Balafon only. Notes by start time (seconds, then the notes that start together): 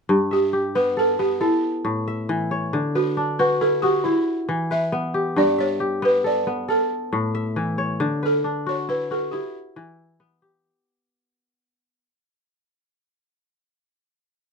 0.33 G4
0.75 B4
0.99 A4
1.19 G4
1.41 E4
2.96 F#4
3.39 B4
3.61 A4
3.82 G4
4.04 E4
4.72 E5
5.38 D5
5.60 C#5
6.05 B4
6.26 D5
6.70 A4
8.26 A4
8.69 C#5
8.89 B4
9.12 A4
9.31 G4